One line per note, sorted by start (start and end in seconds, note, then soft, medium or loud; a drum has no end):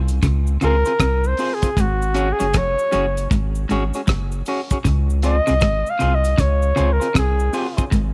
0.00 0.20 C2 medium
0.08 closed hi-hat soft
0.08 cabasa medium
0.22 0.57 C#2 loud
0.22 0.46 C#3 medium
0.22 kick loud
0.22 closed hi-hat medium
0.22 cabasa medium
0.47 cabasa medium
0.61 0.84 C#2 medium
0.61 0.76 C#3 medium
0.61 0.75 C4 medium
0.61 0.75 F4 medium
0.61 0.75 G#4 loud
0.61 1.29 A#4 loud
0.61 0.75 C5 medium
0.61 closed hi-hat medium
0.61 cabasa soft
0.85 0.92 C4 medium
0.85 0.92 F4 medium
0.85 0.92 G#4 medium
0.85 0.92 C5 medium
0.85 closed hi-hat soft
0.85 cabasa medium
1.00 1.34 C2 medium
1.00 1.23 C3 medium
1.00 kick loud
1.00 cross-stick loud
1.00 closed hi-hat medium
1.00 cabasa medium
1.24 1.56 C5 medium
1.24 cabasa soft
1.37 1.51 C4 medium
1.37 1.52 F4 medium
1.37 1.52 G#4 medium
1.37 1.52 C5 medium
1.37 open hi-hat medium
1.37 cabasa medium
1.54 1.82 G#4 medium
1.62 1.69 C4 medium
1.62 1.69 F4 medium
1.62 1.69 G#4 medium
1.62 1.68 C5 medium
1.62 kick medium
1.62 closed hi-hat medium
1.62 cabasa medium
1.77 2.33 G#1 loud
1.77 2.01 G#2 medium
1.77 2.34 F#4 loud
1.77 kick loud
1.77 closed hi-hat medium
1.77 cabasa medium
2.02 cabasa medium
2.14 2.28 C#4 medium
2.14 2.28 F#4 medium
2.14 2.28 G#4 loud
2.14 2.28 C#5 loud
2.14 closed hi-hat medium
2.14 cabasa medium
2.33 2.59 G#4 loud
2.39 2.53 F#1 medium
2.39 2.49 F#2 medium
2.39 2.46 C#4 soft
2.39 2.46 F#4 medium
2.39 2.46 G#4 medium
2.39 2.45 C#5 medium
2.39 closed hi-hat medium
2.39 cabasa medium
2.54 2.76 F1 loud
2.54 2.69 F2 medium
2.54 3.33 C#5 loud
2.54 kick loud
2.54 cross-stick loud
2.54 closed hi-hat loud
2.54 cabasa medium
2.79 cabasa medium
2.92 3.27 F#1 loud
2.92 3.16 F#2 medium
2.92 3.05 C#4 medium
2.92 3.05 F#4 medium
2.92 3.05 G#4 medium
2.92 3.05 C#5 medium
2.92 closed hi-hat medium
2.92 cabasa medium
3.17 closed hi-hat medium
3.17 cabasa medium
3.31 3.65 G#1 loud
3.31 3.54 G#2 medium
3.31 kick loud
3.31 closed hi-hat medium
3.31 cabasa medium
3.55 cabasa medium
3.69 3.92 G#1 medium
3.69 3.84 G#2 medium
3.69 3.83 C#4 medium
3.69 3.83 F#4 medium
3.69 3.83 G#4 medium
3.69 3.83 C#5 loud
3.69 closed hi-hat medium
3.69 cabasa medium
3.94 4.01 C#4 soft
3.94 4.01 F#4 medium
3.94 4.00 G#4 medium
3.94 4.00 C#5 medium
3.94 closed hi-hat soft
3.94 cabasa medium
4.07 4.42 F#1 medium
4.07 4.30 F#2 medium
4.07 kick loud
4.07 cross-stick loud
4.07 closed hi-hat medium
4.07 cabasa medium
4.32 cabasa soft
4.46 4.60 C#4 medium
4.46 4.60 F#4 medium
4.46 4.60 G#4 medium
4.46 4.60 C#5 medium
4.46 open hi-hat medium
4.46 cabasa medium
4.71 4.77 C#4 medium
4.71 4.77 F#4 medium
4.71 4.77 G#4 medium
4.71 4.77 C#5 medium
4.71 kick medium
4.71 closed hi-hat medium
4.71 cabasa medium
4.84 5.41 C#2 loud
4.84 5.08 C#3 medium
4.84 kick loud
4.84 closed hi-hat medium
4.84 cabasa medium
5.10 cabasa medium
5.22 5.36 C4 medium
5.22 5.36 F4 medium
5.22 5.36 G#4 medium
5.22 5.36 C5 medium
5.22 5.92 D#5 loud
5.22 closed hi-hat medium
5.22 cabasa medium
5.47 5.61 C2 medium
5.47 5.56 C3 medium
5.47 5.54 C4 medium
5.47 5.54 F4 medium
5.47 5.53 G#4 medium
5.47 5.53 C5 medium
5.47 closed hi-hat soft
5.47 cabasa medium
5.61 5.84 G#1 loud
5.61 5.76 G#2 medium
5.61 kick loud
5.61 cross-stick loud
5.61 closed hi-hat loud
5.61 cabasa medium
5.87 6.16 F5 loud
5.87 cabasa soft
5.99 6.35 C2 medium
5.99 6.23 C3 medium
5.99 6.13 C4 medium
5.99 6.13 F4 medium
5.99 6.13 G#4 medium
5.99 6.13 C5 medium
5.99 closed hi-hat medium
5.99 cabasa medium
6.15 6.42 D#5 loud
6.24 closed hi-hat medium
6.24 cabasa medium
6.38 6.73 C#2 loud
6.38 6.61 C#3 medium
6.38 6.94 C#5 loud
6.38 kick loud
6.38 closed hi-hat loud
6.38 cabasa medium
6.62 cabasa medium
6.76 7.00 C#2 medium
6.76 6.91 C#3 medium
6.76 6.89 C4 loud
6.76 6.89 F4 loud
6.76 6.90 G#4 loud
6.76 6.90 C5 loud
6.76 closed hi-hat medium
6.76 cabasa soft
6.93 7.17 A#4 medium
7.00 7.07 C4 medium
7.00 7.07 F4 medium
7.00 7.07 G#4 medium
7.00 7.06 C5 medium
7.00 closed hi-hat soft
7.00 cabasa medium
7.14 7.50 C2 medium
7.14 7.38 C3 medium
7.14 kick loud
7.14 cross-stick loud
7.14 closed hi-hat loud
7.14 cabasa medium
7.18 7.90 G#4 medium
7.40 cabasa soft
7.53 7.66 C4 medium
7.53 7.66 F4 medium
7.53 7.66 G#4 medium
7.53 7.67 C5 medium
7.53 open hi-hat medium
7.53 cabasa medium
7.77 7.84 C4 medium
7.77 7.84 F4 medium
7.77 7.84 G#4 medium
7.77 7.83 C5 medium
7.77 kick loud
7.77 closed hi-hat medium
7.77 cabasa medium
7.91 8.13 G#1 loud
7.91 8.13 G#2 medium
7.91 kick loud
7.91 closed hi-hat medium
7.91 cabasa medium